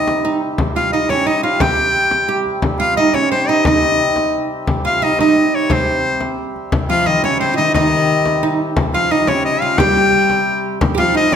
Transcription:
Already playing: harmonium C3 G3, oud D#4, shawm D#5
0.08 frame drum
0.25 oud D#4
0.58 frame drum
0.76 oud F4, shawm F5
0.92 oud D#4, shawm D#5
1.09 oud C#4, shawm C#5, frame drum
1.26 oud D#4, shawm D#5
1.43 oud F4, shawm F5
1.60 oud G4, shawm G5, frame drum
1.77 frame drum
2.11 frame drum
2.29 oud G4, frame drum
2.46 frame drum
2.62 harmonium C3 G3, frame drum
2.80 oud F4, shawm F5
2.97 oud D#4, shawm D#5
3.14 oud C#4, shawm C#5, frame drum
3.31 oud C4, shawm C5
3.48 oud D#4, shawm D#5
3.65 oud D#4, shawm D#5, frame drum
4.16 frame drum
4.67 frame drum
4.85 oud F4, shawm F5
5.02 oud D#4, shawm D#5
5.19 oud D#4, shawm D#5, frame drum
5.55 shawm C#5
5.70 oud C4, shawm C5, frame drum
6.04 frame drum
6.21 frame drum
6.38 frame drum
6.56 frame drum
6.72 harmonium C3 G3, frame drum
6.89 viola da gamba F3, oud F4, shawm F5
7.06 viola da gamba D#3, oud D#4, shawm D#5
7.24 viola da gamba C#3, oud C#4, shawm C#5, frame drum
7.40 oud C4, shawm C5
7.54 viola da gamba D#3, oud F4, shawm D#5
7.58 oud D#4
7.74 viola da gamba D#3, oud D#4, shawm D#5, frame drum
8.26 frame drum
8.43 oud D#4
8.76 frame drum
8.93 viola da gamba F3, oud F4, shawm F5
9.11 oud D#4, shawm D#5
9.27 viola da gamba C#3, oud C#4, shawm C#5, frame drum
9.45 shawm D#5
9.61 oud F4, shawm F5
9.78 viola da gamba G3, oud G4, shawm G5, frame drum
9.96 frame drum
10.13 frame drum
10.30 frame drum
10.80 harmonium C3 G3, frame drum
10.95 viola da gamba F3, oud F4 G4
10.99 shawm F5
11.15 oud D#4, shawm D#5
11.32 viola da gamba C#3, oud C#4, frame drum

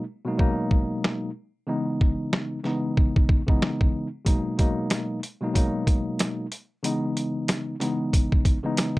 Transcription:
0.25 tine electric piano B2 F#3 G#3 A#3 D#4
0.38 tine electric piano B2 F#3 G#3 A#3 D#4, kick
0.71 kick
1.04 snare
1.67 tine electric piano C#3 E3 G#3 B3 D#4
2.01 kick
2.33 snare
2.63 tine electric piano C#3 E3 G#3 B3 D#4, snare
2.97 kick
3.16 kick
3.29 kick
3.47 tine electric piano C#3 E3 G#3 B3 D#4, kick
3.62 snare
3.81 kick
4.25 tine electric piano B2 F#3 G#3 A#3 D#4, kick, closed hi-hat
4.58 tine electric piano B2 F#3 G#3 A#3 D#4, kick, closed hi-hat
4.90 snare, closed hi-hat
5.23 closed hi-hat
5.41 tine electric piano B2 F#3 G#3 A#3 D#4
5.54 tine electric piano B2 F#3 G#3 A#3 D#4, kick, closed hi-hat
5.87 kick, closed hi-hat
6.19 snare, closed hi-hat
6.52 closed hi-hat
6.83 tine electric piano C#3 E3 G#3 B3 D#4, closed hi-hat
7.17 closed hi-hat
7.48 snare, closed hi-hat
7.80 tine electric piano C#3 E3 G#3 B3 D#4, snare, closed hi-hat
8.13 kick, closed hi-hat
8.32 kick
8.45 kick, closed hi-hat
8.63 tine electric piano C#3 E3 G#3 B3 D#4
8.77 snare, closed hi-hat

